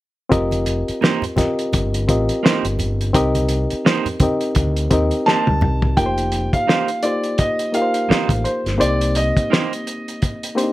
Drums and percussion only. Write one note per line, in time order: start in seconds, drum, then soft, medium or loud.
0.32 kick loud
0.32 closed hi-hat medium
0.32 muted conga soft
0.51 closed hi-hat medium
0.51 high conga medium
0.66 closed hi-hat medium
0.66 muted conga soft
0.88 closed hi-hat soft
1.02 snare medium
1.02 muted conga soft
1.22 closed hi-hat soft
1.22 low conga medium
1.37 kick medium
1.37 snare soft
1.37 closed hi-hat medium
1.37 muted conga soft
1.37 high conga medium
1.37 low conga medium
1.59 closed hi-hat soft
1.73 kick medium
1.73 closed hi-hat medium
1.73 high conga medium
1.94 closed hi-hat medium
2.09 kick medium
2.09 closed hi-hat medium
2.29 closed hi-hat soft
2.46 snare loud
2.65 closed hi-hat medium
2.79 closed hi-hat medium
2.79 muted conga soft
2.79 low conga medium
3.01 closed hi-hat soft
3.14 kick loud
3.14 closed hi-hat medium
3.35 closed hi-hat medium
3.35 high conga medium
3.49 closed hi-hat medium
3.49 muted conga soft
3.70 closed hi-hat soft
3.86 snare medium
4.06 closed hi-hat soft
4.06 low conga medium
4.20 kick medium
4.20 closed hi-hat medium
4.20 muted conga soft
4.20 high conga medium
4.20 low conga medium
4.41 closed hi-hat soft
4.55 kick medium
4.55 closed hi-hat medium
4.55 high conga medium
4.76 closed hi-hat medium
4.91 kick medium
4.91 closed hi-hat medium
4.91 muted conga soft
5.11 closed hi-hat soft
5.28 snare soft
5.47 high tom medium
5.61 mid tom medium
5.61 muted conga soft
5.61 low conga medium
5.82 floor tom medium
5.97 kick medium
5.97 closed hi-hat medium
6.18 closed hi-hat medium
6.32 closed hi-hat medium
6.53 kick medium
6.53 closed hi-hat soft
6.69 snare medium
6.88 closed hi-hat soft
7.03 closed hi-hat medium
7.24 closed hi-hat soft
7.38 kick medium
7.38 closed hi-hat medium
7.59 closed hi-hat medium
7.74 closed hi-hat medium
7.94 closed hi-hat soft
8.11 snare medium
8.29 kick medium
8.29 closed hi-hat medium
8.45 closed hi-hat medium
8.66 snare soft
8.66 closed hi-hat soft
8.81 closed hi-hat medium
9.01 closed hi-hat medium
9.15 closed hi-hat medium
9.37 kick medium
9.37 closed hi-hat soft
9.53 snare medium
9.73 closed hi-hat soft
9.87 closed hi-hat medium
10.08 closed hi-hat soft
10.22 kick medium
10.22 closed hi-hat medium
10.43 closed hi-hat medium
10.58 closed hi-hat medium